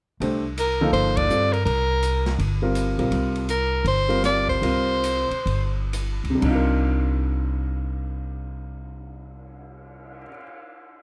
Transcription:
0.20 C2 A3 D4 G4 C5, ride
0.58 A#4, hi-hat pedal, ride
0.81 F3 A#3 D#4 A4
0.93 G1 C5, ride
1.17 D5, kick, ride
1.29 G2 G3 C4 F4 A4, hi-hat pedal
1.53 A#4, ride
1.65 C2 A#4, ride
2.03 hi-hat pedal, ride
2.26 snare, ride
2.39 G1, ride
2.62 G3 C4 F4 A#4
2.75 hi-hat pedal, ride
2.98 A#1 G3 C4 F4 A#4, ride
3.11 C2, ride
3.36 ride
3.49 A#4, hi-hat pedal, ride
3.85 G1 C5, ride
4.09 G3 C4 F4 A#4, ride
4.24 D5, snare, hi-hat pedal, ride
4.49 C5, kick
4.62 C2 G3 C4 F4 A#4, ride
5.04 hi-hat pedal, ride
5.31 muted upright bass stroke, ride
5.46 G1, ride
5.93 hi-hat pedal, ride
6.24 C#2, ride
6.30 C3
6.35 G3
6.40 C2 D4, kick, crash
6.45 D#4
6.50 F4
6.55 A#4
6.76 cymbal swell

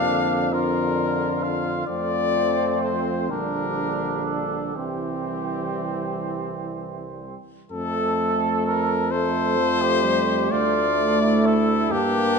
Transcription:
Already playing: F2 A#3 D4 F5
0.08 D3
0.53 D3 D4 F4 A#4
1.43 F5
1.87 F2 F3 A3 C4 D5
2.82 C5
3.29 A#1 D3 G3 D4 A#4
4.25 A4
4.75 C2 E3 G3 C4 G4
7.71 F2 A3 A4
8.67 A#4
9.11 A3 A4 C5
9.58 F3
9.81 G4
10.03 G3
10.49 D2 A3 F4 D5
11.22 E4
11.46 A4
11.91 G2 A#3 D4 G4

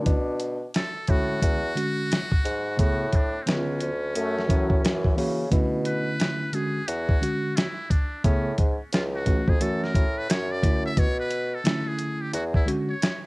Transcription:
Already playing: D3 A3 C#4 D4 E4
0.06 B2, kick, closed hi-hat
0.40 closed hi-hat
0.74 A4, snare, closed hi-hat
1.07 A2 D3 G#3 C#4 F#4, kick, closed hi-hat
1.42 E2, kick, closed hi-hat
1.76 D3 G#3 C#4 F#4, closed hi-hat
2.12 snare, closed hi-hat
2.32 kick
2.45 G#2, closed hi-hat
2.77 A2 C#3 A3 B3 F#4 G#4, kick, closed hi-hat
3.13 D4, kick, closed hi-hat
3.43 D3 C4
3.47 C#2 B3 C#4 F4, snare, closed hi-hat
3.80 D2, closed hi-hat
4.15 F#2 A3, closed hi-hat
4.39 snare
4.48 A2 E3 F#3 C#4 F#4 A#4, kick, closed hi-hat
4.70 kick
4.83 F#2 E3, snare, closed hi-hat
5.04 kick
5.16 C#3 E3 A#3 C#4 F#4, open hi-hat
5.51 B2 D3 A3 C#4 E4, kick, closed hi-hat
5.85 B4, closed hi-hat
6.20 snare, closed hi-hat
6.53 D3 G#3 C#4 F#4 G#4, closed hi-hat
6.88 E2 F#4, closed hi-hat
7.09 kick
7.21 D3 G#3 C#4 F#4, closed hi-hat
7.56 E4, snare, closed hi-hat
7.90 D4, kick, closed hi-hat
8.24 A2 C#3 A3 B3 C#4 G#4, kick, closed hi-hat
8.58 G#2, kick, closed hi-hat
8.93 C#2 F4, snare, closed hi-hat
9.15 F#4
9.26 E3 A3 C#4 F#4, kick, closed hi-hat
9.48 F2 G#4, kick
9.60 F#2 E3 A3 C#4 F#4 A4, closed hi-hat
9.84 A#4, snare
9.95 A2, kick, closed hi-hat
10.18 B4
10.29 F#2 C#5, snare, closed hi-hat
10.51 D5
10.62 D3 A3 C#4 E4, kick, closed hi-hat
10.86 E5
10.97 B2 C#5, kick, closed hi-hat
11.20 B4
11.31 closed hi-hat
11.55 A4
11.64 D3 A3 C#4 E4, snare, closed hi-hat
11.88 G#4
11.99 closed hi-hat
12.21 G4
12.33 E2 F#4, closed hi-hat
12.54 E4, kick
12.66 D3 G#3 C#4 F#4, closed hi-hat
12.90 C#5
13.02 snare, closed hi-hat

